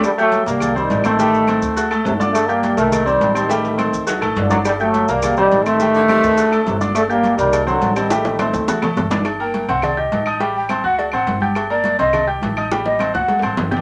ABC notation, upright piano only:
X:1
M:4/4
L:1/8
Q:1/4=208
K:Gm
V:1 name="Upright piano"
z [Ggg']2 [B,Bb]2 [Ccc']2 [Ccc'] | [G,Gg]2 [Ccc']2 [^F^f^f'] [A,Aa]2 [Ddd']- | [Ddd'] [Ggg']2 [B,Bb]2 [Ccc']2 [Ccc'] | [G,Gg]2 [Ccc']2 [^F^f^f'] [A,Aa]2 [Ddd']- |
[Ddd'] [Ggg']2 [B,Bb]2 [Ccc']2 [Ccc'] | [G,Gg]2 [Ccc']2 [^F^f^f'] [A,Aa]2 [Ddd']- | [Ddd'] [Ggg']2 [B,Bb]2 [Ccc']2 [Ccc'] | [G,Gg]2 [Ccc']2 [^F^f^f'] [A,Aa]2 [Ddd'] |
z [B,Bb]2 [Ccc']2 [Ggg']2 [Eee'] | [G,Gg]2 [Ccc'] [^F^f^f']2 [Ccc']2 [Ggg']- | [Ggg'] [B,Bb]2 [Ccc']2 [Ggg']2 [Eee'] | [G,Gg]2 [Ccc'] [^F^f^f']2 [Ccc']2 [Ggg'] |]